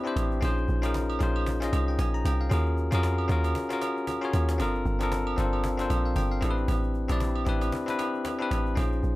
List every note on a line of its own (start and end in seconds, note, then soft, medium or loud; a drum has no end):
0.00 0.04 C4 medium
0.00 0.35 C4 medium
0.00 0.05 D4 medium
0.00 0.06 E4 medium
0.00 0.07 G4 medium
0.00 0.44 B4 loud
0.00 0.44 D5 medium
0.05 0.35 D4 medium
0.05 0.36 E4 medium
0.05 0.36 G4 medium
0.05 0.37 C5 loud
0.05 cajon slap soft
0.16 0.41 A1 medium
0.16 cajon slap loud
0.16 high agogo medium
0.31 cajon slap soft
0.41 0.68 A#1 loud
0.41 0.74 C#4 medium
0.41 0.74 D#4 medium
0.41 0.75 F4 medium
0.41 0.75 G#4 medium
0.41 0.76 C5 loud
0.41 cajon bass loud
0.41 high agogo medium
0.57 cajon slap soft
0.68 1.19 A#1 loud
0.68 cajon slap medium
0.82 1.13 C#4 medium
0.82 1.14 D#4 medium
0.82 1.14 F4 medium
0.82 1.15 G#4 medium
0.82 1.15 A#4 loud
0.82 cajon slap medium
0.82 high agogo medium
0.94 cajon bass medium
0.94 cajon slap medium
0.94 low woodblock medium
1.10 cajon slap soft
1.10 high agogo medium
1.19 1.71 A#1 loud
1.19 1.52 C#4 medium
1.19 1.52 D#4 medium
1.19 1.53 F4 medium
1.19 1.53 G#4 medium
1.19 1.54 C5 medium
1.19 cajon slap medium
1.19 cajon slap soft
1.36 cajon slap soft
1.36 high agogo medium
1.46 cajon bass loud
1.60 2.01 C#4 medium
1.60 2.02 D#4 medium
1.60 2.02 F4 medium
1.60 2.03 G#4 medium
1.60 2.03 D#5 medium
1.60 cajon slap medium
1.73 1.98 C2 medium
1.73 cajon slap medium
1.73 high agogo medium
1.88 1.98 G5 medium
1.88 cajon slap soft
1.99 2.24 A#1 medium
1.99 2.14 G#5 medium
1.99 cajon bass medium
1.99 cajon slap loud
1.99 high agogo medium
2.14 2.25 A#5 medium
2.14 cajon slap soft
2.25 2.50 C2 medium
2.25 2.40 G5 medium
2.25 cajon slap loud
2.25 high agogo medium
2.40 2.65 F5 medium
2.40 cajon slap soft
2.50 2.91 D#2 loud
2.50 2.82 C#4 medium
2.50 2.83 F4 medium
2.50 2.83 F#4 medium
2.50 2.84 G#4 medium
2.50 2.84 A#4 loud
2.50 cajon bass loud
2.50 high agogo medium
2.66 cajon slap soft
2.77 cajon slap soft
2.91 3.28 F2 medium
2.91 3.22 C#4 medium
2.91 3.22 F4 medium
2.91 3.23 F#4 medium
2.91 3.23 G#4 medium
2.91 3.24 A#4 loud
2.91 cajon slap medium
2.91 high agogo medium
3.03 cajon bass medium
3.03 cajon slap medium
3.03 low woodblock medium
3.18 cajon slap soft
3.18 high agogo medium
3.28 3.54 D#2 loud
3.28 3.61 C#4 medium
3.28 3.61 F4 medium
3.28 3.62 F#4 medium
3.28 3.62 G#4 medium
3.28 3.63 A#4 medium
3.28 cajon slap medium
3.28 cajon slap soft
3.44 cajon slap medium
3.44 high agogo medium
3.55 cajon bass loud
3.69 4.10 C#4 medium
3.69 4.10 F4 medium
3.69 4.11 F#4 medium
3.69 4.11 G#4 medium
3.69 4.12 A#4 medium
3.69 cajon slap medium
3.82 cajon slap medium
3.82 high agogo medium
3.97 cajon slap soft
4.07 cajon bass medium
4.07 cajon slap medium
4.07 high agogo medium
4.21 4.52 C#4 medium
4.21 4.53 F4 medium
4.21 4.53 F#4 medium
4.21 4.54 G#4 medium
4.21 4.54 C#5 medium
4.21 cajon slap soft
4.33 4.61 D#2 medium
4.33 cajon slap medium
4.33 high agogo medium
4.49 cajon slap medium
4.58 4.85 G1 loud
4.58 4.91 C4 medium
4.58 4.92 D4 medium
4.58 4.92 F4 medium
4.58 4.92 A4 medium
4.58 4.93 A#4 medium
4.58 cajon bass loud
4.58 high agogo medium
4.75 cajon slap soft
4.85 5.36 G1 loud
4.85 cajon slap medium
4.99 5.31 C4 medium
4.99 5.31 D4 medium
4.99 5.32 F4 medium
4.99 5.32 A4 medium
4.99 5.33 A#4 medium
4.99 cajon slap medium
4.99 high agogo medium
5.12 cajon bass medium
5.12 cajon slap loud
5.12 low woodblock medium
5.27 cajon slap soft
5.27 high agogo medium
5.36 5.88 G1 loud
5.36 5.69 C4 medium
5.36 5.70 D4 medium
5.36 5.70 F4 medium
5.36 5.71 A4 medium
5.36 5.71 C5 medium
5.36 cajon slap medium
5.36 cajon slap soft
5.53 cajon slap soft
5.53 high agogo medium
5.64 cajon bass loud
5.77 6.18 C4 medium
5.77 6.19 D4 medium
5.77 6.19 F4 medium
5.77 6.20 A4 medium
5.77 6.20 C5 medium
5.77 cajon slap medium
5.90 6.15 A#1 loud
5.90 cajon slap soft
5.90 cajon slap medium
5.90 high agogo medium
6.05 6.16 F5 medium
6.05 cajon slap soft
6.16 6.41 G1 medium
6.16 6.31 G5 medium
6.16 cajon bass medium
6.16 cajon slap medium
6.16 high agogo medium
6.31 6.56 F5 medium
6.31 cajon slap soft
6.41 6.67 A1 loud
6.41 6.94 C4 medium
6.41 6.94 D4 medium
6.41 6.95 E4 medium
6.41 6.95 G4 medium
6.41 6.51 A4 medium
6.41 cajon slap loud
6.41 high agogo medium
6.51 6.99 B4 loud
6.57 cajon slap soft
6.68 7.08 A1 loud
6.68 cajon bass loud
6.68 high agogo medium
6.83 cajon slap soft
6.94 cajon slap medium
7.08 7.45 A#1 medium
7.08 7.39 C4 medium
7.08 7.40 D4 medium
7.08 7.40 E4 medium
7.08 7.41 G4 medium
7.08 7.41 D5 medium
7.08 cajon slap medium
7.08 high agogo medium
7.20 cajon bass medium
7.20 cajon slap medium
7.20 low woodblock medium
7.35 high agogo medium
7.45 7.72 A1 loud
7.45 7.78 C4 medium
7.45 7.78 D4 medium
7.45 7.79 E4 medium
7.45 7.79 G4 medium
7.45 7.80 B4 medium
7.45 cajon slap medium
7.45 cajon slap soft
7.61 cajon slap medium
7.61 high agogo medium
7.72 cajon bass loud
7.86 8.27 C4 medium
7.86 8.28 D4 medium
7.86 8.28 E4 medium
7.86 8.29 G4 medium
7.86 8.29 B4 medium
7.86 cajon slap medium
7.99 cajon slap medium
7.99 high agogo medium
8.14 cajon slap soft
8.25 cajon bass loud
8.25 cajon slap loud
8.25 high agogo medium
8.39 8.70 C4 medium
8.39 8.70 D4 medium
8.39 8.71 E4 medium
8.39 8.71 G4 medium
8.39 8.72 B4 loud
8.39 cajon slap soft
8.51 8.76 A1 medium
8.51 cajon slap loud
8.51 high agogo medium
8.66 cajon slap soft
8.75 9.02 A#1 loud
8.75 9.08 C#4 medium
8.75 9.09 D#4 medium
8.75 9.09 F4 medium
8.75 9.10 G#4 medium
8.75 9.10 C5 medium
8.75 cajon bass loud
8.75 high agogo medium
8.92 cajon slap soft
9.03 9.16 A#1 medium
9.03 cajon slap medium